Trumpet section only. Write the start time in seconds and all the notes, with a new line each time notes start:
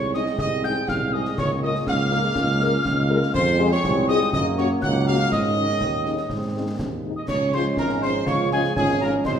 Already playing: C#5
0.14 D#5
0.39 D#5
0.64 G5
0.89 F5
1.13 D#5
1.38 C#5
1.62 D#5
1.87 F5
3.34 C5
3.71 C#5
4.08 D#5
4.33 D#5
4.58 C#5
4.83 F#5
5.07 F5
5.31 D#5
7.17 D#5
7.29 C#5
7.54 C5
7.77 A#4
8.02 C5
8.26 C#5
8.52 G#4
8.77 G#4
9.02 A#4
9.26 C5